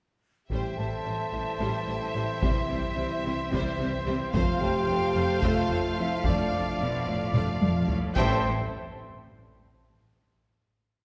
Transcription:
0.50 double bass section A1, cello section A2, trombone section E3 G3, viola section G3, string section C4 E4 G4 C5, french horn section G4, trumpet C5, violin section C5 E5, flute section G5, taiko
0.76 double bass section A1, cello section A2, viola section G3, french horn section A4, violin section C5, flute section A5
1.04 double bass section A1, cello section A2, viola section G3, violin section C5
1.32 double bass section A1, cello section A2, viola section G3, violin section C5
1.60 double bass section A1, cello section A2, viola section G3, violin section C5
1.87 double bass section A1, cello section A2, viola section G3, violin section C5
2.14 double bass section A1, cello section A2, viola section G3, violin section C5
2.41 double bass section C2, cello section C3, viola section G3, french horn section E4, violin section C5, flute section E5, taiko
2.68 double bass section C2, cello section C3, viola section G3, violin section C5
2.96 double bass section C2, cello section C3, viola section G3, violin section C5
3.24 double bass section C2, cello section C3, viola section G3, violin section C5
3.50 double bass section C2, cello section C3, viola section G3, french horn section C4, flute section C5, violin section C5, taiko
3.78 double bass section C2, cello section C3, viola section G3, violin section C5
4.06 double bass section C2, cello section C3, viola section G3, violin section C5
4.33 double bass section F1, cello section F2, trombone section F3 A3, viola section A3, string section F4 A4, french horn section F4, violin section C5 F5, trumpet C5, flute section F5, taiko
4.60 double bass section F1, cello section F2, viola section A3, french horn section G4, violin section C5, flute section G5
4.88 double bass section F1, cello section F2, viola section A3, violin section C5
5.15 double bass section F1, cello section F2, viola section A3, violin section C5
5.41 double bass section F1, cello section F2, viola section A3, french horn section F4, violin section C5, flute section F5, taiko
5.70 double bass section F1, cello section F2, viola section A3, violin section C5
5.96 double bass section F1, cello section F2, viola section A3, french horn section E4, violin section C5, flute section E5
6.24 double bass section F1, cello section F2, viola section A3, string section A3 D5, french horn section D4, violin section D5, trumpet D5, flute section D5, taiko
6.52 double bass section F1, cello section F2, viola section A3, violin section D5
6.79 double bass section F1, cello section B2, viola section A3, violin section D5
7.06 double bass section F1, cello section A2, viola section A3, violin section D5
7.34 double bass section F1, cello section G2, viola section A3, violin section D5, taiko mid
7.62 double bass section F1, cello section F2, viola section A3, violin section D5, taiko high
7.88 double bass section F1, cello section A2, viola section A3, violin section D5, taiko low
8.15 double bass section A1, cello section A2, trombone section E3 G3, string section G3 E4 A4 C5, french horn section A3, viola section C4, trumpet C5, violin section E5 G5, flute section A5, taiko

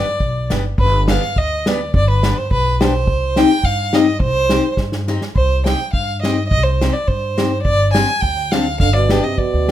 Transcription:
Already playing: fiddle D5
0.20 upright bass B1, kick
0.50 upright bass G1, steel-string acoustic guitar B3 D4 G4, snare
0.78 upright bass G1, fiddle B4, kick
1.08 steel-string acoustic guitar B3 D4 G4, fiddle F5, snare
1.22 snare
1.36 upright bass D2, fiddle D#5, kick
1.66 steel-string acoustic guitar B3 D4 G4, fiddle D5, snare
1.94 upright bass G1, fiddle D5, kick
2.10 fiddle B4
2.23 steel-string acoustic guitar B3 D4 G4, snare
2.38 fiddle C5
2.51 upright bass B1, fiddle B4, kick
2.80 steel-string acoustic guitar B3 D4 G4, fiddle C5, snare
3.07 upright bass C2, kick
3.36 steel-string acoustic guitar C4 D#4 G4, fiddle G5, snare
3.50 snare
3.64 upright bass G2, fiddle F5, kick
3.93 steel-string acoustic guitar C4 D#4 G4, fiddle D#5, snare
4.20 upright bass C2, fiddle C5, kick
4.49 steel-string acoustic guitar C4 D#4 G4, snare
4.77 upright bass G2, kick, snare
4.92 snare
5.08 steel-string acoustic guitar C4 D#4 G4, snare
5.21 snare
5.36 upright bass C2, fiddle C5, kick
5.66 steel-string acoustic guitar C4 D#4 G4, fiddle G5, snare
5.93 upright bass G2, fiddle F5, kick
6.21 steel-string acoustic guitar C4 D#4 G4, fiddle D#5, snare
6.48 upright bass C2, fiddle D#5, kick
6.63 fiddle C5
6.81 steel-string acoustic guitar C4 D#4 G4, snare
6.93 fiddle D5
7.07 upright bass G2, fiddle C5, kick
7.38 steel-string acoustic guitar C4 D#4 G4, snare
7.62 upright bass G1, fiddle D5, kick
7.93 steel-string acoustic guitar C4 D4 G4, fiddle G#5, snare
8.21 upright bass D2, fiddle G5, kick
8.51 steel-string acoustic guitar C4 D4 G4, fiddle F5, snare
8.79 upright bass G1, euphonium D3, fiddle F5, kick
8.93 euphonium B2, fiddle D5
9.09 steel-string acoustic guitar B3 D4 G4, snare
9.22 euphonium C3, fiddle D#5
9.37 upright bass F2, euphonium B2, fiddle D5, kick
9.54 upright bass D2

